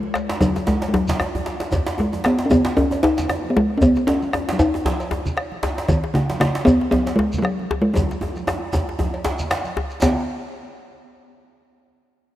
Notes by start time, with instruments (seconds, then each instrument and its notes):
Already playing: talking drum G#3
0.03 high conga
0.14 bombo rim, cowbell, djembe slap, shekere
0.29 bombo rim, djembe slap
0.41 talking drum F#3, bombo rim, bombo low, cowbell, djembe tone, high conga, low conga, shekere
0.56 djembe slap, high conga, djembe tone, shekere
0.67 talking drum G#3, djembe slap, high conga, djembe bass, shekere
0.82 cowbell, djembe slap, shekere
0.88 talking drum G#3
0.94 talking drum F#3, djembe slap, djembe tone
1.08 bombo low, djembe slap, low conga, shekere
1.20 bombo rim, cowbell, djembe tone, djembe bass
1.35 bombo rim, djembe tone, high conga, djembe bass
1.46 djembe slap
1.60 djembe slap
1.72 bombo low, cowbell, djembe slap, djembe tone, djembe bass, low conga, shekere
1.87 djembe slap, shekere
1.98 talking drum G#3, djembe tone
2.13 djembe tone, high conga, shekere
2.24 talking drum B3, bombo rim, cowbell, djembe slap
2.39 djembe slap
2.40 djembe slap
2.46 talking drum C#4
2.50 talking drum B3, bombo rim, bombo low, cowbell, djembe tone, high conga, low conga, shekere
2.65 djembe slap
2.66 djembe slap
2.77 talking drum C#4, djembe tone, high conga, djembe bass
2.91 cowbell, djembe tone, shekere
3.03 talking drum D#4, djembe slap, djembe tone
3.18 bombo low, djembe slap, low conga, shekere
3.29 bombo rim, cowbell, djembe tone
3.44 djembe slap, high conga
3.50 talking drum B3
3.57 talking drum G#3, djembe slap, djembe tone
3.70 bombo rim
3.78 talking drum C#4, bombo low, low conga, shekere
3.82 talking drum B3, cowbell, djembe slap, djembe bass
3.96 djembe slap, shekere
4.07 talking drum C#4, djembe slap, djembe tone
4.22 high conga, shekere
4.33 bombo rim, cowbell, djembe slap, djembe tone
4.48 djembe slap
4.53 talking drum F#3
4.59 talking drum D#4, bombo rim, bombo low, cowbell, djembe tone, high conga, shekere
4.74 djembe slap, djembe tone
4.85 djembe slap, high conga, djembe bass
5.00 cowbell, shekere
5.11 djembe slap, djembe tone
5.26 bombo low, low conga, shekere
5.37 bombo rim, cowbell
5.52 djembe slap, high conga
5.63 djembe slap, djembe tone
5.78 bombo rim, djembe slap
5.88 talking drum D#3, bombo low, cowbell, djembe slap, djembe bass, low conga, shekere
6.04 djembe slap
6.14 talking drum C#3, djembe slap, djembe tone
6.30 djembe slap, high conga, shekere
6.40 talking drum C#3, bombo rim, cowbell, djembe slap
6.55 djembe slap
6.65 talking drum B3, bombo rim, bombo low, cowbell, djembe tone, high conga, low conga, shekere
6.81 djembe slap
6.91 talking drum B3, djembe slap, high conga, djembe bass
7.06 cowbell, djembe slap, shekere
7.16 talking drum G#3, djembe slap, djembe tone
7.33 bombo low, low conga, shekere
7.38 talking drum G#3
7.42 talking drum F#3, bombo rim, cowbell
7.59 djembe slap, high conga
7.71 djembe slap, djembe tone
7.82 talking drum G#3, bombo rim
7.94 talking drum F#3, bombo low, cowbell, high conga, djembe tone, low conga, djembe bass, shekere
8.10 bombo rim, djembe slap, high conga, shekere
8.21 djembe tone
8.23 djembe tone
8.36 bombo rim, high conga, shekere
8.47 bombo rim, cowbell, djembe slap, djembe tone, shekere
8.62 high conga
8.73 bombo low, cowbell, djembe slap, high conga, djembe tone, low conga, shekere
8.88 djembe slap, high conga
8.99 djembe tone, high conga, djembe bass
9.14 cowbell
9.25 bombo rim, djembe slap, djembe tone, shekere
9.39 bombo low, low conga, shekere
9.50 bombo rim, cowbell, djembe slap, high conga, shekere
9.65 djembe slap, high conga, shekere
9.77 djembe slap, djembe tone
9.90 djembe slap, shekere
10.01 talking drum B3, bombo low, cowbell, djembe slap, low conga, djembe bass, shekere